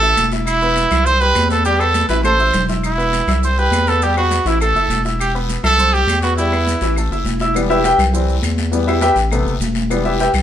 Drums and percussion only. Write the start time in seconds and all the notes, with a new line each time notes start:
0.03 high conga, maracas
0.17 high conga, short guiro, maracas
0.32 short guiro, maracas
0.46 high conga, long guiro, claves, maracas
0.61 high conga, maracas
0.76 high conga, short guiro, maracas
0.91 high conga, low conga, short guiro, claves, maracas
1.06 high conga, low conga, long guiro, maracas
1.21 high conga, maracas
1.35 high conga, short guiro, claves, maracas
1.50 high conga, short guiro, maracas
1.65 high conga, long guiro, maracas
1.80 high conga, claves, maracas
1.94 high conga, short guiro, maracas
2.09 high conga, short guiro, maracas
2.23 high conga, long guiro, claves, maracas
2.40 maracas
2.54 low conga, short guiro, maracas
2.69 low conga, short guiro, maracas
2.84 high conga, long guiro, claves, maracas
2.99 high conga, maracas
3.13 high conga, short guiro, maracas
3.28 high conga, low conga, short guiro, claves, maracas
3.43 high conga, long guiro, maracas
3.57 high conga, maracas
3.71 high conga, short guiro, claves, maracas
3.87 short guiro, maracas
4.01 high conga, long guiro, maracas
4.16 high conga, claves, maracas
4.31 high conga, short guiro, maracas
4.46 high conga, short guiro, maracas
4.60 high conga, long guiro, claves, maracas
4.75 high conga, maracas
4.89 high conga, short guiro, maracas
5.05 short guiro, maracas
5.18 high conga, long guiro, claves, maracas
5.34 high conga, maracas
5.49 high conga, short guiro, maracas
5.63 high conga, low conga, short guiro, claves, maracas
5.78 high conga, low conga, maracas
5.95 maracas
6.07 high conga, short guiro, claves, maracas
6.22 short guiro, maracas
6.37 high conga, long guiro, maracas
6.53 high conga, claves, maracas
6.67 high conga, short guiro, maracas
6.81 high conga, short guiro, maracas
6.95 high conga, long guiro, claves, maracas
7.10 high conga, maracas
7.25 high conga, short guiro, maracas
7.40 short guiro, maracas
7.54 high conga, long guiro, claves, maracas
7.69 high conga, maracas
7.84 high conga, short guiro, maracas
7.99 high conga, low conga, short guiro, claves, maracas
8.13 high conga, low conga, long guiro, maracas
8.29 maracas
8.42 high conga, short guiro, claves, maracas
8.57 high conga, short guiro, maracas
8.72 long guiro, maracas
8.86 high conga, claves, maracas
9.01 high conga, short guiro, maracas
9.16 high conga, short guiro, maracas
9.31 high conga, long guiro, claves, maracas
9.46 high conga, maracas
9.60 high conga, short guiro, maracas
9.75 high conga, short guiro, maracas
9.90 long guiro, claves, maracas
10.05 high conga, maracas
10.19 high conga, short guiro, maracas
10.34 high conga, low conga, short guiro, claves, maracas